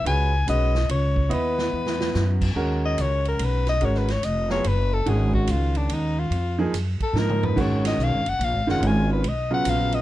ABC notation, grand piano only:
X:1
M:3/4
L:1/8
Q:"Swing" 1/4=144
K:G#phr
V:1 name="Grand piano"
[G,CFB] z [G,CFB] z3 | [B,EBd]4- [B,EBd] z | [K:G#dor] [G,CFA]4- [G,CFA] z | [G,CFA] z2 [F,B,EG] z2 |
[D,G,CF]4- [D,G,CF] z | z [E,A,DG] z2 [E,A,DA]2 | [D,G,CF]3 z2 [D,G,CE]- | [D,G,CE]2 z [C,F,B,E]3 |]